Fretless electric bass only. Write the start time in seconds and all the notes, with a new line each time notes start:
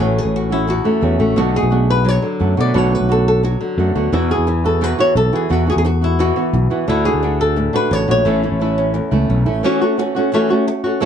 0.00 A1
0.25 A1
1.03 E2
1.20 A1
1.37 B1
1.63 B1
2.41 F#2
2.58 B2
2.75 B1
3.01 B1
3.78 F#2
3.96 D2
4.13 E2
4.38 E2
5.15 B1
5.33 E3
5.50 E2
5.76 E2
6.53 B1
6.71 E3
6.88 D2
7.14 D2
7.91 A1
8.08 A#1
8.26 A1
8.52 A1
9.12 C#2
9.29 B1
9.47 A1